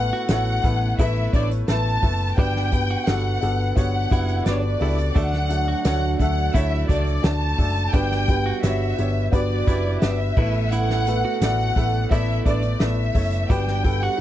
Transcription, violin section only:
Already playing: F#5
0.29 F#5
0.99 E5
1.34 D5
1.69 A5
2.38 G5
3.08 F#5
3.77 F#5
4.47 D5
4.53 C#5
4.61 D5
5.16 F#5
5.85 F#5
6.20 F#5
6.56 E5
6.90 D5
7.24 A5
7.93 G5
8.64 E5
9.34 D5
10.02 E5
10.73 F#5
11.42 F#5
12.12 E5
12.47 D5
12.81 E5
13.51 G5
14.03 F#5

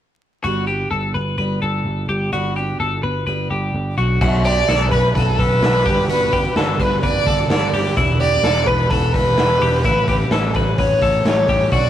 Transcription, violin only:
4.45 D5
4.91 B4
5.15 A4
5.39 B4
6.10 B4
6.80 B4
7.04 D5
7.51 D5
8.21 D5
8.66 B4
8.90 A4
9.12 B4
9.82 B4
10.54 A4
10.78 C#5
11.26 C#5
11.72 D5

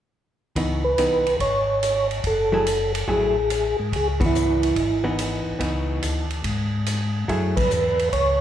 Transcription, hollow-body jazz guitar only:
0.56 E3 B3 D#4
0.98 E3 B3 D#4
2.52 F#3 A3 E4 G#4
3.08 F#3 A3 E4 G#4
4.20 E3 B3
5.04 E3 B3 D#4
5.59 E3 B3 D#4
7.28 F#3 A3 E4 G#4

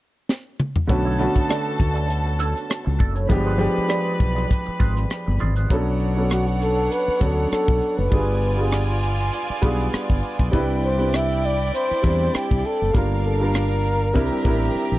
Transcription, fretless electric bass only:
0.90 B1
1.36 muted fretless electric bass stroke
1.80 D2
2.87 C#2
3.00 F#1
3.30 G1
3.78 muted fretless electric bass stroke
4.21 B1
4.68 muted fretless electric bass stroke
4.81 G#1
5.27 G1
5.42 G#1
5.71 B1
7.08 muted fretless electric bass stroke
7.22 D2
7.52 muted fretless electric bass stroke
7.69 B1
7.98 F#1
8.12 G1
9.50 muted fretless electric bass stroke
9.63 B1
9.93 muted fretless electric bass stroke
10.10 G1
10.40 B1
10.54 C2
11.91 muted fretless electric bass stroke
12.04 E2
12.35 muted fretless electric bass stroke
12.51 C2
12.81 F#1
12.95 G1
14.16 C2
14.45 A1
14.75 muted fretless electric bass stroke
14.91 A#1

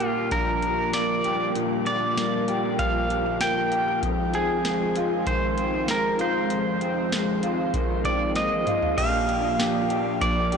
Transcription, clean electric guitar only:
Already playing: A#2 A#3 D4
0.00 G4
0.32 F3
0.63 D4
0.93 A#3
1.24 G4
1.55 A#2
1.86 D4
2.17 A#3
2.48 G4
2.79 F3
3.10 D4
3.41 A#3
3.72 G4
4.03 F2
4.34 C4
4.65 G#3
4.96 F4
5.27 D#3
5.58 C4
5.89 G#3
6.19 F4
6.50 F2
6.82 C4
7.13 G#3
7.43 F4
7.74 D#3
8.05 C4
8.36 G#3
8.67 F4
8.97 A#2 G4
9.29 D4
9.59 G4
9.90 D4
10.22 F3
10.52 G4

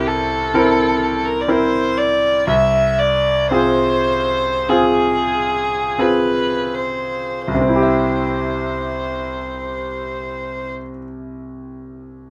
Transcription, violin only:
0.07 A4
1.25 A#4
1.41 D5
1.50 C5
1.98 D5
2.49 E5
2.99 D5
3.53 C5
4.70 G#4
6.00 B4
6.74 C5
7.50 C5

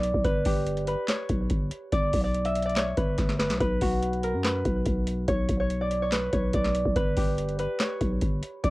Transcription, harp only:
Already playing: B4 D5
0.25 B4
0.46 G4
0.88 B4
1.09 C#5
1.92 D5
2.24 D5
2.45 E5
2.66 D5
2.77 C#5
2.97 B4
3.39 B4
3.60 B4
3.82 F#4
4.24 A#4
4.44 B4
5.28 C#5
5.60 C#5
5.81 D5
6.02 C#5
6.12 B4
6.33 C#5
6.54 D5
6.96 B4
7.17 G4
7.59 B4
7.80 C#5
8.64 D5

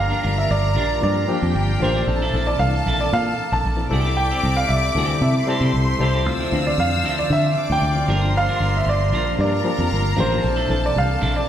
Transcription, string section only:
Already playing: A#4 A#5
1.30 G4 G5
2.06 A4 A5
3.90 D5 D6
5.47 C5 C6
6.25 F5 E6
7.56 D5 D6
8.08 C5 C6
9.39 A#4 A#5
10.42 A4 A5

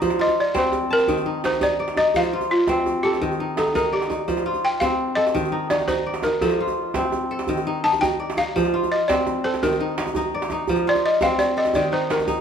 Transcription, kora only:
Already playing: C4 D#4 A4 D5
0.02 F3
0.19 F4
0.54 C4
0.90 A5
1.08 D#3
1.26 D#4
1.45 D#4
1.61 D#4
1.80 D5
1.97 D#4
2.16 F3
2.33 F4
2.69 C4
3.05 A4
3.21 D#3
3.40 D#4
3.58 D#4
3.75 D#4
3.92 D5
4.10 D#4
4.28 F3
4.46 F4
4.81 C4
5.17 A4
5.35 D#3
5.52 D#4
5.71 D#4
5.89 D#4
6.06 D5
6.25 D#4
6.42 F3
6.60 F4
6.96 C4
7.31 A4
7.49 D#3
7.67 D#4
7.84 D#4
8.01 D#4
8.20 D5
8.37 D#4
8.56 F3
8.74 F4
9.09 C4
9.45 A4
9.63 D#3
9.80 D#4
9.99 D#4
10.16 D#4
10.34 D5
10.52 D#4
10.69 F3
10.87 F4
11.22 C4
11.57 A4
11.76 D#3
11.92 D#4
12.10 D#4
12.28 D#4

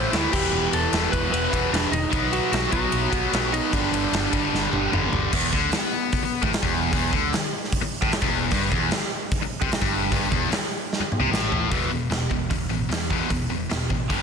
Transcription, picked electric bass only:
0.13 D2
0.34 E1
0.53 E1
0.73 E1
0.93 E1
1.13 E1
1.33 E1
1.53 E1
1.71 E1
1.91 E1
2.13 B1
2.52 B1
2.73 B1
2.93 B1
3.13 B1
3.33 B1
3.73 G1
3.92 G1
4.12 G1
4.33 G1
4.53 G1
4.73 G1
4.94 G1
5.12 G1
5.33 E1
5.52 D2
5.73 muted picked electric bass stroke
6.22 muted picked electric bass stroke
6.42 A1
6.52 muted picked electric bass stroke
6.63 E1
6.93 E1
7.13 D2
7.33 muted picked electric bass stroke
7.82 muted picked electric bass stroke
8.02 A1
8.12 muted picked electric bass stroke
8.22 E1
8.52 G1
8.71 E1
8.93 muted picked electric bass stroke
9.42 muted picked electric bass stroke
9.62 C2
9.71 muted picked electric bass stroke
9.82 G1
10.12 G1
10.32 E1
10.50 muted picked electric bass stroke
11.00 muted picked electric bass stroke
11.20 C2
11.30 A1
11.72 E1
11.89 E1
12.09 E1
12.31 E1
12.51 E1
12.70 A1
12.90 E2
13.30 E1
13.50 E1
13.70 E1
13.91 A1
14.11 G1

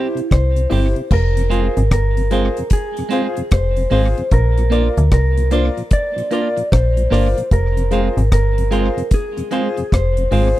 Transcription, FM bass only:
0.32 C2
0.72 G1
1.11 F1
1.77 G#1
1.92 G1
3.52 F1
3.92 G#1
4.32 A#1
4.98 D2
5.12 C2
6.73 A#1
7.12 G1
7.52 F1
8.17 G#1
8.32 G1
9.93 F1
10.32 G#1

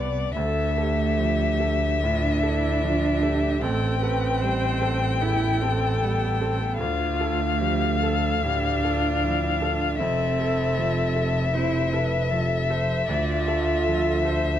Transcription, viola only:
0.36 A4
0.78 G4
2.02 F4
2.43 E4
2.82 F4
3.22 G4
3.61 A4
4.00 B4
4.41 C5
5.21 A4
6.79 F4
7.58 G4
8.00 A4
8.43 G4
8.83 F4
9.24 E4
9.62 F4
10.02 A4
11.54 C5
11.93 B4
12.31 A4
12.70 C5
13.07 D5
13.87 A4
14.24 C5

